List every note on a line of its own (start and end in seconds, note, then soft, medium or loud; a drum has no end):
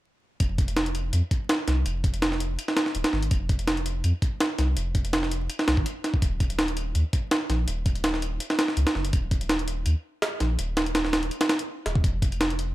0.40 1.12 F1 loud
0.40 kick loud
0.40 closed hi-hat medium
0.58 kick medium
0.58 closed hi-hat medium
0.68 closed hi-hat soft
0.77 snare loud
0.77 closed hi-hat medium
0.86 closed hi-hat soft
0.95 closed hi-hat medium
1.13 1.22 F2 medium
1.13 closed hi-hat medium
1.31 kick medium
1.31 closed hi-hat medium
1.49 snare loud
1.49 closed hi-hat medium
1.67 1.84 C2 medium
1.67 snare soft
1.67 closed hi-hat medium
1.86 2.57 F1 loud
1.86 closed hi-hat medium
2.04 kick medium
2.04 closed hi-hat medium
2.14 closed hi-hat soft
2.22 snare loud
2.22 closed hi-hat medium
2.32 snare soft
2.40 closed hi-hat medium
2.59 closed hi-hat medium
2.68 snare medium
2.77 snare loud
2.77 closed hi-hat medium
2.86 snare soft
2.95 3.04 D#1 medium
2.95 closed hi-hat medium
3.04 snare loud
3.04 closed hi-hat medium
3.13 3.29 G#1 loud
3.13 snare soft
3.23 closed hi-hat medium
3.31 4.03 F1 medium
3.31 kick loud
3.31 closed hi-hat medium
3.49 kick medium
3.49 closed hi-hat medium
3.59 closed hi-hat soft
3.67 snare loud
3.67 closed hi-hat medium
3.77 closed hi-hat soft
3.86 closed hi-hat medium
4.04 4.13 F2 medium
4.04 closed hi-hat medium
4.22 kick medium
4.22 closed hi-hat medium
4.40 snare loud
4.40 closed hi-hat medium
4.58 4.75 C2 medium
4.58 snare soft
4.58 closed hi-hat medium
4.77 5.48 F1 medium
4.77 closed hi-hat medium
4.95 kick medium
4.95 closed hi-hat medium
5.05 closed hi-hat soft
5.13 snare loud
5.13 closed hi-hat medium
5.23 snare soft
5.31 closed hi-hat medium
5.50 closed hi-hat medium
5.59 snare medium
5.68 5.76 C2 medium
5.68 snare loud
5.68 closed hi-hat medium
5.77 5.85 G#1 loud
5.77 kick medium
5.86 closed hi-hat medium
6.04 snare soft
6.04 closed hi-hat medium
6.14 kick loud
6.22 6.94 D#1 loud
6.22 kick loud
6.22 closed hi-hat medium
6.40 kick medium
6.40 closed hi-hat medium
6.50 closed hi-hat soft
6.59 snare loud
6.59 closed hi-hat medium
6.68 closed hi-hat soft
6.77 closed hi-hat medium
6.95 7.04 D#2 medium
6.95 closed hi-hat medium
7.13 kick medium
7.13 closed hi-hat medium
7.31 snare loud
7.31 closed hi-hat medium
7.49 7.66 A#1 medium
7.49 snare soft
7.49 closed hi-hat medium
7.68 8.39 D#1 loud
7.68 closed hi-hat medium
7.86 kick medium
7.86 closed hi-hat medium
7.96 closed hi-hat soft
8.04 snare loud
8.04 closed hi-hat medium
8.14 snare soft
8.22 closed hi-hat medium
8.40 closed hi-hat medium
8.50 snare medium
8.59 snare loud
8.59 closed hi-hat medium
8.68 snare soft
8.77 8.85 C#2 medium
8.77 closed hi-hat medium
8.87 snare loud
8.87 closed hi-hat medium
8.95 9.12 F#1 loud
8.95 snare soft
9.05 closed hi-hat medium
9.13 9.84 D#1 loud
9.13 kick loud
9.13 closed hi-hat medium
9.31 kick medium
9.31 closed hi-hat medium
9.41 closed hi-hat soft
9.49 snare loud
9.49 closed hi-hat medium
9.59 closed hi-hat soft
9.68 closed hi-hat medium
9.86 9.95 D#2 medium
9.86 closed hi-hat medium
10.22 snare loud
10.22 closed hi-hat medium
10.40 10.57 A#1 medium
10.40 snare soft
10.40 closed hi-hat medium
10.59 11.30 D#1 loud
10.59 closed hi-hat medium
10.77 snare loud
10.77 closed hi-hat medium
10.86 closed hi-hat soft
10.95 snare loud
10.95 closed hi-hat medium
11.05 snare soft
11.13 snare loud
11.13 closed hi-hat medium
11.23 closed hi-hat soft
11.31 closed hi-hat medium
11.41 snare loud
11.41 closed hi-hat medium
11.49 snare loud
11.49 closed hi-hat medium
11.59 closed hi-hat medium
11.86 12.02 D#1 medium
11.86 snare soft
11.86 closed hi-hat medium
11.96 kick medium
12.04 12.75 F1 loud
12.04 kick loud
12.04 closed hi-hat medium
12.22 kick medium
12.22 closed hi-hat medium
12.32 closed hi-hat soft
12.41 snare loud
12.41 closed hi-hat medium
12.50 closed hi-hat soft
12.59 closed hi-hat medium